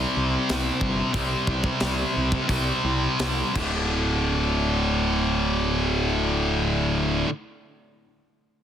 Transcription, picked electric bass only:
0.17 0.36 C2 medium
0.50 0.69 C2 medium
0.81 1.01 G1 medium
1.14 1.34 C2 medium
1.48 1.68 C2 medium
1.82 2.02 C2 medium
2.17 2.37 C2 medium
2.50 2.71 C2 medium
2.84 3.06 C2 medium
3.20 3.42 C2 medium
3.56 7.23 D1 medium

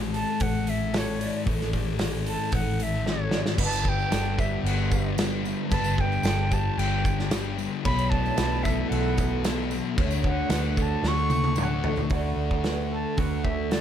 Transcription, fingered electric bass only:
0.00 0.23 A1 loud
0.41 1.29 A1 medium
1.46 2.35 A1 loud
2.52 3.42 A1 medium
3.57 4.03 G1 loud
4.11 4.56 G1 loud
4.63 5.53 G1 medium
5.71 6.16 G1 loud
6.23 6.69 G1 loud
6.78 7.67 G1 medium
7.85 8.29 B1 loud
8.38 8.82 B1 loud
8.91 9.80 B1 medium
9.97 10.42 D2 loud
10.50 10.95 D2 loud
11.03 11.93 D2 medium
12.10 12.33 D2 loud
12.36 13.04 D2 medium
13.17 13.81 D2 medium

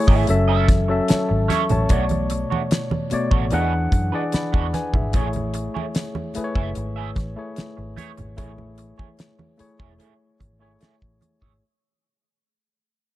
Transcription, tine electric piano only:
0.00 0.30 A3 medium
0.00 0.30 E4 medium
0.00 0.31 G#4 medium
0.00 0.31 C#5 loud
0.29 0.77 F#3 medium
0.29 0.77 C#4 medium
0.29 0.78 A4 medium
0.29 0.78 E5 loud
0.89 1.64 F#3 medium
0.89 1.64 C#4 medium
0.89 1.65 A4 medium
0.89 1.11 E5 medium
1.10 1.48 C#5 medium
1.10 1.48 A5 medium
1.50 1.70 E5 medium
1.50 1.69 C#6 medium
1.71 1.89 C#5 medium
1.71 2.09 A5 medium
1.89 2.80 B2 medium
1.89 2.80 A3 medium
1.89 2.81 C#5 medium
1.89 2.81 D5 medium
3.11 3.52 B2 medium
3.11 3.52 A3 medium
3.11 3.53 C#5 medium
3.11 3.53 D5 medium
3.51 4.00 E3 medium
3.51 4.01 D4 medium
3.51 4.01 G#4 medium
3.51 4.02 F#5 loud
4.12 4.88 E3 medium
4.12 4.88 D4 medium
4.12 4.34 G#4 medium
4.12 4.34 D5 loud
4.34 4.73 D5 medium
4.34 4.72 B5 medium
4.74 4.93 B4 medium
4.74 4.93 G#5 medium
4.95 5.14 G#4 medium
4.95 5.33 E5 medium
5.14 6.04 A3 medium
5.14 6.04 E4 medium
5.14 6.05 G#4 medium
5.14 6.05 C#5 medium
6.35 7.10 A3 medium
6.35 7.11 E4 medium
6.35 7.11 G#4 medium
6.35 6.43 B4 medium
6.44 7.15 C#5 medium
7.36 8.12 A3 medium
7.36 8.12 E4 medium
7.36 8.13 G#4 medium
7.36 8.13 C#5 medium
8.37 9.27 A3 medium
8.37 9.28 E4 medium
8.37 9.28 G#4 medium
8.37 9.29 C#5 medium
9.58 10.34 A3 medium
9.58 10.34 E4 medium
9.58 10.35 G#4 medium
9.58 10.35 C#5 medium
10.59 11.35 A3 medium
10.59 11.36 E4 medium
10.59 11.36 G#4 medium
10.59 11.37 C#5 medium

